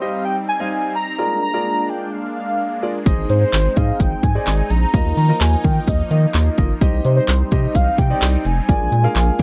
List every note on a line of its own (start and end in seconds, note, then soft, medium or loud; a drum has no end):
0.00 1.17 G3 medium
0.00 1.17 C4 medium
0.00 1.15 D#4 medium
0.00 0.35 D#4 medium
0.00 0.35 G4 medium
0.00 0.35 C5 medium
0.00 0.35 D#5 medium
0.00 0.24 F5 medium
0.25 0.36 G5 loud
0.49 0.92 G#5 loud
0.60 0.93 G3 medium
0.60 0.93 D#4 medium
0.60 0.94 C5 medium
0.60 0.94 F5 medium
0.95 1.39 A#5 loud
1.18 4.90 G#3 medium
1.18 3.04 A#3 medium
1.18 3.04 D4 medium
1.18 1.39 F4 medium
1.18 1.39 G#4 medium
1.18 1.39 A#4 medium
1.18 1.39 D5 medium
1.42 1.91 A#5 loud
1.54 2.07 F4 medium
1.54 2.07 G#4 medium
1.54 2.07 A#4 medium
1.54 2.08 D5 medium
1.89 2.14 G5 loud
2.13 2.35 F5 loud
2.36 2.80 F5 medium
2.82 2.96 F4 medium
2.82 2.96 G#4 medium
2.82 2.96 A#4 medium
2.82 2.96 D5 medium
3.06 3.14 G#1 loud
3.06 4.92 C4 medium
3.06 3.46 D#4 medium
3.06 6.78 D#4 medium
3.06 3.46 G#4 medium
3.06 3.46 C5 medium
3.06 3.46 D#5 medium
3.06 kick loud
3.06 closed hi-hat medium
3.18 3.25 G#1 loud
3.30 3.45 G#2 loud
3.30 3.41 C5 medium
3.30 closed hi-hat medium
3.41 3.78 C5 medium
3.53 3.68 G#1 loud
3.53 clap loud
3.53 closed hi-hat medium
3.53 tambourine medium
3.76 3.92 G#2 loud
3.76 4.10 D#4 medium
3.76 4.10 G#4 medium
3.76 4.10 C5 medium
3.76 4.10 D#5 medium
3.76 4.02 F5 loud
3.76 kick medium
3.76 closed hi-hat medium
4.00 4.15 G#1 loud
4.00 4.25 G5 loud
4.00 kick loud
4.00 closed hi-hat loud
4.23 4.38 G#2 medium
4.23 4.72 G#5 loud
4.23 kick loud
4.23 closed hi-hat medium
4.35 4.68 D#4 medium
4.35 4.69 G#4 medium
4.35 4.69 C5 medium
4.35 4.69 D5 medium
4.47 4.62 G#1 loud
4.47 clap loud
4.47 closed hi-hat medium
4.47 tambourine medium
4.70 4.86 A#1 loud
4.70 5.17 A#5 loud
4.70 closed hi-hat medium
4.94 5.01 D#2 loud
4.94 6.79 F3 medium
4.94 6.79 A#3 medium
4.94 5.14 D#4 medium
4.94 5.14 F4 medium
4.94 5.14 A#4 medium
4.94 5.14 D#5 medium
4.94 kick loud
4.94 closed hi-hat medium
5.05 5.13 D#2 loud
5.17 5.32 D#3 loud
5.17 5.42 A#5 loud
5.17 closed hi-hat medium
5.29 5.82 D#4 medium
5.29 5.82 F4 medium
5.29 5.82 A#4 medium
5.29 5.83 D#5 medium
5.41 5.56 D#2 loud
5.41 5.66 G#5 loud
5.41 clap loud
5.41 closed hi-hat medium
5.41 tambourine medium
5.64 5.79 D#3 loud
5.64 5.89 G5 loud
5.64 kick loud
5.64 closed hi-hat medium
5.87 6.03 D#2 loud
5.87 6.10 D#5 loud
5.87 kick loud
5.87 closed hi-hat loud
6.11 6.26 D#3 loud
6.11 6.54 D#5 medium
6.11 closed hi-hat medium
6.34 6.50 D#2 loud
6.34 clap loud
6.34 closed hi-hat medium
6.34 tambourine medium
6.58 6.73 G1 loud
6.58 6.71 D#4 medium
6.58 6.71 F4 medium
6.58 6.71 A#4 medium
6.58 6.71 D#5 medium
6.58 kick medium
6.58 closed hi-hat medium
6.81 6.89 C2 loud
6.81 8.67 G3 medium
6.81 8.67 C4 medium
6.81 7.21 D#4 medium
6.81 8.67 D#4 medium
6.81 7.21 G4 medium
6.81 7.21 C5 medium
6.81 7.21 D#5 loud
6.81 kick loud
6.81 closed hi-hat medium
6.93 7.01 C2 loud
7.05 7.20 C3 loud
7.05 7.10 C5 medium
7.05 closed hi-hat medium
7.17 7.49 C5 medium
7.28 7.43 C2 loud
7.28 clap loud
7.28 closed hi-hat medium
7.28 tambourine medium
7.51 7.67 C3 loud
7.51 7.85 D#4 medium
7.51 7.85 G4 medium
7.51 7.85 C5 medium
7.51 7.77 D#5 medium
7.51 7.85 D#5 medium
7.51 kick medium
7.51 closed hi-hat medium
7.75 7.90 C2 loud
7.75 7.98 F5 loud
7.75 kick medium
7.75 closed hi-hat loud
7.98 8.14 C3 loud
7.98 8.47 G5 loud
7.98 kick medium
7.98 closed hi-hat medium
8.10 8.43 D#4 medium
8.10 8.44 G4 medium
8.10 8.44 C5 medium
8.10 8.44 D5 medium
8.22 8.37 C2 loud
8.22 clap loud
8.22 closed hi-hat medium
8.22 tambourine medium
8.45 8.61 F1 medium
8.45 9.43 G#5 loud
8.45 closed hi-hat medium
8.69 8.76 A#1 loud
8.69 9.43 G#3 medium
8.69 9.43 A#3 medium
8.69 9.43 D4 medium
8.69 8.89 F4 medium
8.69 8.89 G#4 medium
8.69 8.89 A#4 medium
8.69 8.89 D5 medium
8.69 kick loud
8.69 closed hi-hat medium
8.80 8.88 A#1 medium
8.92 9.07 A#2 loud
8.92 closed hi-hat medium
9.04 9.43 F4 medium
9.04 9.43 G#4 medium
9.04 9.43 A#4 medium
9.04 9.43 F5 loud
9.15 9.31 A#1 loud
9.15 clap loud
9.15 closed hi-hat medium
9.15 tambourine medium
9.39 9.43 A#2 loud
9.39 9.43 G5 medium
9.39 kick medium
9.39 closed hi-hat medium